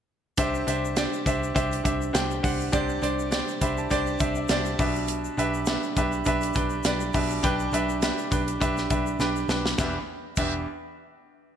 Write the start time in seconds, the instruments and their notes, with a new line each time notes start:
0.37 picked electric bass C2, grand piano C3 D4 G4 C5 E5, kick, closed hi-hat, shaker
0.55 shaker
0.67 picked electric bass C2, grand piano D4 G4 C5 E5, closed hi-hat, shaker
0.85 shaker
0.96 grand piano D4 G4 C5 D5, snare, closed hi-hat, shaker
1.13 shaker
1.26 picked electric bass C2, grand piano D4 G4 C5 E5, kick, closed hi-hat, shaker
1.43 shaker
1.55 picked electric bass C2, grand piano D4 G4 C5 E5, kick, closed hi-hat, shaker
1.72 closed hi-hat, shaker
1.84 picked electric bass C2, grand piano D4 G4 C5 E5, kick, closed hi-hat, shaker
2.02 shaker
2.13 picked electric bass C2, grand piano D4 G4 C5 G5, snare, closed hi-hat, shaker
2.31 shaker
2.43 picked electric bass C2, grand piano D4 G4 C5 F#5, kick, open hi-hat, shaker
2.60 shaker
2.72 picked electric bass C2, grand piano C3 D4 G4 C5 D5, kick, closed hi-hat, shaker
2.89 shaker
3.02 picked electric bass C2, grand piano D4 G4 C5 D5, closed hi-hat, shaker
3.19 shaker
3.31 grand piano D4 G4 C5 D5, snare, closed hi-hat, shaker
3.48 shaker
3.61 picked electric bass C2, grand piano D4 G4 C5 E5 B5, kick, closed hi-hat, shaker
3.78 grand piano A5, shaker
3.90 picked electric bass C2, grand piano D4 G4 C5 D5 G5, kick, closed hi-hat, shaker
4.07 shaker
4.19 picked electric bass C2, grand piano D4 G4 C5 E5, kick, closed hi-hat, shaker
4.35 grand piano E5, shaker
4.48 picked electric bass C2, grand piano D4 G4 C5 D5 E5, snare, closed hi-hat, shaker
4.65 shaker
4.79 picked electric bass B1, grand piano B2 D4 G4 B4 E5, kick, open hi-hat, shaker
4.95 shaker
5.07 closed hi-hat, shaker
5.25 shaker
5.37 picked electric bass B1, grand piano D4 G4 B4 E5, closed hi-hat, shaker
5.54 shaker
5.66 grand piano D4 G4 B4 E5, snare, closed hi-hat, shaker
5.83 shaker
5.96 picked electric bass B1, grand piano D4 G4 B4 E5, kick, closed hi-hat, shaker
6.12 shaker
6.25 picked electric bass B1, grand piano D4 G4 B4 E5, kick, closed hi-hat, shaker
6.41 closed hi-hat, shaker
6.54 picked electric bass B1, grand piano D4 G4 B4 G5, kick, closed hi-hat, shaker
6.70 shaker
6.83 picked electric bass B1, grand piano D4 G4 B4 D5, snare, closed hi-hat, shaker
7.00 shaker
7.13 picked electric bass B1, grand piano B2 D4 G4 B4 E5, kick, open hi-hat, shaker
7.30 shaker
7.43 picked electric bass B1, grand piano D4 G4 B4 G5, kick, closed hi-hat, shaker
7.59 shaker
7.72 picked electric bass B1, grand piano D4 G4 B4 E5, closed hi-hat, shaker
7.89 shaker
8.02 grand piano D4 G4 B4 E5, snare, closed hi-hat, shaker
8.18 shaker
8.31 picked electric bass B1, grand piano D4 G4 B4 G5, kick, closed hi-hat, shaker
8.48 closed hi-hat, shaker
8.60 picked electric bass B1, grand piano D4 G4 B4 E5, kick, closed hi-hat, shaker
8.77 snare, shaker
8.90 picked electric bass B1, grand piano D4 G4 B4 E5, kick, closed hi-hat, shaker
9.07 shaker
9.19 picked electric bass B1, grand piano D4 G4 B4 G5, snare, shaker
9.36 shaker
9.49 picked electric bass B1, grand piano D4 G4 B4 G5, snare, shaker
9.66 snare, shaker
9.78 picked electric bass E1, grand piano E2 D4 G4 B4 E5, kick, snare, shaker
10.36 picked electric bass E1, grand piano E2 D4 G4 B4 E5, kick, crash, shaker